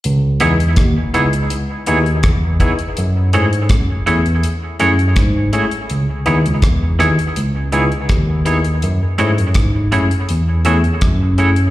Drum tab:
HH |x-xxx-xxx-xxx-xx|x-xxx-xxx-xxx-xx|x-xxx-xxx-xxx-xx|x-xxx-xxx-xxx-xx|
SD |----r-------r---|----r-------r---|----r-r-----r---|----r-------r---|
BD |----o-------o-o-|----o-------o---|----o-------o---|----o-------o---|